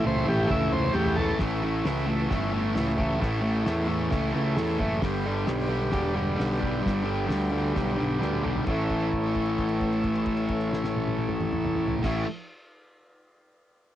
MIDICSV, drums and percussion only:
0, 0, Header, 1, 2, 480
1, 0, Start_track
1, 0, Tempo, 451807
1, 1496, Time_signature, 4, 2, 24, 8
1, 6304, Tempo, 455927
1, 14745, End_track
2, 0, Start_track
2, 0, Title_t, "Drums"
2, 47, Note_on_c, 9, 48, 82
2, 154, Note_off_c, 9, 48, 0
2, 175, Note_on_c, 9, 48, 68
2, 281, Note_off_c, 9, 48, 0
2, 304, Note_on_c, 9, 48, 91
2, 410, Note_off_c, 9, 48, 0
2, 426, Note_on_c, 9, 47, 76
2, 532, Note_off_c, 9, 47, 0
2, 536, Note_on_c, 9, 36, 121
2, 543, Note_on_c, 9, 47, 98
2, 642, Note_off_c, 9, 36, 0
2, 649, Note_off_c, 9, 47, 0
2, 656, Note_on_c, 9, 47, 84
2, 762, Note_off_c, 9, 47, 0
2, 782, Note_on_c, 9, 45, 105
2, 889, Note_off_c, 9, 45, 0
2, 900, Note_on_c, 9, 45, 87
2, 1006, Note_off_c, 9, 45, 0
2, 1007, Note_on_c, 9, 45, 118
2, 1113, Note_off_c, 9, 45, 0
2, 1123, Note_on_c, 9, 43, 102
2, 1230, Note_off_c, 9, 43, 0
2, 1252, Note_on_c, 9, 43, 115
2, 1358, Note_off_c, 9, 43, 0
2, 1365, Note_on_c, 9, 43, 95
2, 1472, Note_off_c, 9, 43, 0
2, 1476, Note_on_c, 9, 38, 115
2, 1477, Note_on_c, 9, 46, 60
2, 1491, Note_on_c, 9, 36, 108
2, 1582, Note_off_c, 9, 38, 0
2, 1583, Note_off_c, 9, 46, 0
2, 1597, Note_off_c, 9, 36, 0
2, 1968, Note_on_c, 9, 38, 115
2, 1969, Note_on_c, 9, 46, 60
2, 2074, Note_off_c, 9, 38, 0
2, 2075, Note_off_c, 9, 46, 0
2, 2450, Note_on_c, 9, 38, 104
2, 2451, Note_on_c, 9, 46, 58
2, 2455, Note_on_c, 9, 36, 118
2, 2556, Note_off_c, 9, 38, 0
2, 2557, Note_off_c, 9, 46, 0
2, 2561, Note_off_c, 9, 36, 0
2, 2928, Note_on_c, 9, 38, 109
2, 2929, Note_on_c, 9, 46, 57
2, 3035, Note_off_c, 9, 38, 0
2, 3036, Note_off_c, 9, 46, 0
2, 3176, Note_on_c, 9, 36, 84
2, 3282, Note_off_c, 9, 36, 0
2, 3422, Note_on_c, 9, 36, 111
2, 3425, Note_on_c, 9, 38, 111
2, 3426, Note_on_c, 9, 46, 53
2, 3528, Note_off_c, 9, 36, 0
2, 3532, Note_off_c, 9, 38, 0
2, 3533, Note_off_c, 9, 46, 0
2, 3892, Note_on_c, 9, 38, 120
2, 3893, Note_on_c, 9, 46, 57
2, 3998, Note_off_c, 9, 38, 0
2, 3999, Note_off_c, 9, 46, 0
2, 4368, Note_on_c, 9, 38, 106
2, 4370, Note_on_c, 9, 46, 54
2, 4380, Note_on_c, 9, 36, 106
2, 4475, Note_off_c, 9, 38, 0
2, 4476, Note_off_c, 9, 46, 0
2, 4486, Note_off_c, 9, 36, 0
2, 4855, Note_on_c, 9, 38, 106
2, 4856, Note_on_c, 9, 46, 56
2, 4961, Note_off_c, 9, 38, 0
2, 4962, Note_off_c, 9, 46, 0
2, 5102, Note_on_c, 9, 36, 81
2, 5208, Note_off_c, 9, 36, 0
2, 5337, Note_on_c, 9, 38, 111
2, 5338, Note_on_c, 9, 46, 59
2, 5342, Note_on_c, 9, 36, 109
2, 5443, Note_off_c, 9, 38, 0
2, 5444, Note_off_c, 9, 46, 0
2, 5448, Note_off_c, 9, 36, 0
2, 5814, Note_on_c, 9, 38, 105
2, 5815, Note_on_c, 9, 46, 65
2, 5920, Note_off_c, 9, 38, 0
2, 5921, Note_off_c, 9, 46, 0
2, 6287, Note_on_c, 9, 38, 112
2, 6288, Note_on_c, 9, 46, 55
2, 6308, Note_on_c, 9, 36, 111
2, 6392, Note_off_c, 9, 38, 0
2, 6393, Note_off_c, 9, 46, 0
2, 6413, Note_off_c, 9, 36, 0
2, 6792, Note_on_c, 9, 38, 112
2, 6793, Note_on_c, 9, 46, 55
2, 6897, Note_off_c, 9, 38, 0
2, 6898, Note_off_c, 9, 46, 0
2, 7038, Note_on_c, 9, 36, 87
2, 7143, Note_off_c, 9, 36, 0
2, 7281, Note_on_c, 9, 36, 102
2, 7289, Note_on_c, 9, 38, 108
2, 7290, Note_on_c, 9, 46, 52
2, 7387, Note_off_c, 9, 36, 0
2, 7394, Note_off_c, 9, 38, 0
2, 7396, Note_off_c, 9, 46, 0
2, 7750, Note_on_c, 9, 38, 108
2, 7751, Note_on_c, 9, 46, 58
2, 7855, Note_off_c, 9, 38, 0
2, 7856, Note_off_c, 9, 46, 0
2, 8229, Note_on_c, 9, 38, 102
2, 8230, Note_on_c, 9, 46, 52
2, 8232, Note_on_c, 9, 36, 100
2, 8334, Note_off_c, 9, 38, 0
2, 8335, Note_off_c, 9, 46, 0
2, 8338, Note_off_c, 9, 36, 0
2, 8708, Note_on_c, 9, 38, 60
2, 8813, Note_off_c, 9, 38, 0
2, 8833, Note_on_c, 9, 48, 66
2, 8938, Note_off_c, 9, 48, 0
2, 8950, Note_on_c, 9, 45, 83
2, 9055, Note_off_c, 9, 45, 0
2, 9062, Note_on_c, 9, 43, 72
2, 9168, Note_off_c, 9, 43, 0
2, 9181, Note_on_c, 9, 49, 78
2, 9187, Note_on_c, 9, 36, 104
2, 9286, Note_off_c, 9, 49, 0
2, 9292, Note_off_c, 9, 36, 0
2, 9424, Note_on_c, 9, 49, 41
2, 9427, Note_on_c, 9, 36, 65
2, 9529, Note_off_c, 9, 49, 0
2, 9533, Note_off_c, 9, 36, 0
2, 9539, Note_on_c, 9, 57, 42
2, 9644, Note_off_c, 9, 57, 0
2, 9659, Note_on_c, 9, 49, 44
2, 9667, Note_on_c, 9, 36, 63
2, 9764, Note_off_c, 9, 49, 0
2, 9772, Note_off_c, 9, 36, 0
2, 9777, Note_on_c, 9, 57, 39
2, 9882, Note_off_c, 9, 57, 0
2, 9893, Note_on_c, 9, 49, 40
2, 9906, Note_on_c, 9, 36, 58
2, 9998, Note_off_c, 9, 49, 0
2, 10010, Note_on_c, 9, 57, 44
2, 10011, Note_off_c, 9, 36, 0
2, 10116, Note_off_c, 9, 57, 0
2, 10142, Note_on_c, 9, 49, 44
2, 10146, Note_on_c, 9, 36, 65
2, 10247, Note_off_c, 9, 49, 0
2, 10252, Note_off_c, 9, 36, 0
2, 10255, Note_on_c, 9, 57, 45
2, 10360, Note_off_c, 9, 57, 0
2, 10383, Note_on_c, 9, 49, 45
2, 10386, Note_on_c, 9, 36, 60
2, 10488, Note_off_c, 9, 49, 0
2, 10492, Note_off_c, 9, 36, 0
2, 10507, Note_on_c, 9, 57, 49
2, 10612, Note_off_c, 9, 57, 0
2, 10624, Note_on_c, 9, 49, 49
2, 10628, Note_on_c, 9, 36, 61
2, 10729, Note_off_c, 9, 49, 0
2, 10733, Note_off_c, 9, 36, 0
2, 10744, Note_on_c, 9, 57, 49
2, 10850, Note_off_c, 9, 57, 0
2, 10854, Note_on_c, 9, 49, 52
2, 10865, Note_on_c, 9, 36, 60
2, 10960, Note_off_c, 9, 49, 0
2, 10970, Note_off_c, 9, 36, 0
2, 10972, Note_on_c, 9, 57, 48
2, 11077, Note_off_c, 9, 57, 0
2, 11093, Note_on_c, 9, 49, 50
2, 11104, Note_on_c, 9, 36, 63
2, 11199, Note_off_c, 9, 49, 0
2, 11209, Note_off_c, 9, 36, 0
2, 11223, Note_on_c, 9, 57, 46
2, 11328, Note_off_c, 9, 57, 0
2, 11353, Note_on_c, 9, 38, 87
2, 11458, Note_off_c, 9, 38, 0
2, 11468, Note_on_c, 9, 38, 82
2, 11574, Note_off_c, 9, 38, 0
2, 11601, Note_on_c, 9, 48, 94
2, 11707, Note_off_c, 9, 48, 0
2, 11719, Note_on_c, 9, 48, 84
2, 11824, Note_off_c, 9, 48, 0
2, 11828, Note_on_c, 9, 48, 89
2, 11933, Note_off_c, 9, 48, 0
2, 11941, Note_on_c, 9, 47, 90
2, 12046, Note_off_c, 9, 47, 0
2, 12064, Note_on_c, 9, 47, 92
2, 12169, Note_off_c, 9, 47, 0
2, 12189, Note_on_c, 9, 45, 88
2, 12294, Note_off_c, 9, 45, 0
2, 12318, Note_on_c, 9, 45, 92
2, 12423, Note_off_c, 9, 45, 0
2, 12428, Note_on_c, 9, 45, 93
2, 12533, Note_off_c, 9, 45, 0
2, 12562, Note_on_c, 9, 43, 106
2, 12667, Note_off_c, 9, 43, 0
2, 12678, Note_on_c, 9, 43, 105
2, 12729, Note_on_c, 9, 38, 91
2, 12730, Note_on_c, 9, 49, 108
2, 12735, Note_on_c, 9, 36, 102
2, 12783, Note_off_c, 9, 43, 0
2, 12834, Note_off_c, 9, 38, 0
2, 12836, Note_off_c, 9, 49, 0
2, 12841, Note_off_c, 9, 36, 0
2, 14745, End_track
0, 0, End_of_file